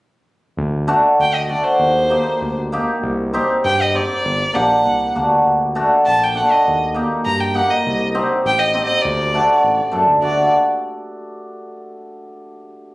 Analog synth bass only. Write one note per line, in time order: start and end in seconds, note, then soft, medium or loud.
0.57 0.94 D2 loud
1.19 1.56 D2 medium
1.79 2.16 D#2 loud
2.41 2.78 D2 medium
3.02 3.39 C2 loud
3.64 4.01 G2 medium
4.25 4.43 G1 loud
4.56 4.83 A#1 medium
4.85 5.13 C2 medium
5.16 5.43 D2 medium
5.46 5.82 D2 medium
6.07 6.43 A#1 medium
6.67 7.03 D#2 medium
7.26 7.62 G2 medium
7.86 8.21 C2 medium
8.45 8.81 A1 medium
9.05 9.40 D2 loud
9.63 9.81 A1 medium
9.93 10.06 F#2 medium
10.07 10.20 D2 medium
10.22 10.50 D2 medium